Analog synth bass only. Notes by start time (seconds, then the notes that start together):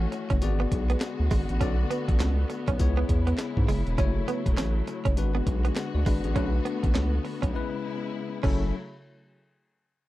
0.30 F#1
0.42 G#1
0.72 B1
1.20 D2
1.31 G#1
1.50 A1
1.61 B1
2.08 A1
2.21 C#2
2.68 B1
2.80 C#2
3.09 E2
3.57 G#2
3.69 F#1
3.87 E1
3.98 F#1
4.46 E1
4.57 A1
5.05 F#1
5.17 G#1
5.47 B1
5.95 D2
6.06 G#1
6.24 A1
6.36 B1
6.83 A1
6.95 C#2
7.43 B1
8.44 F#1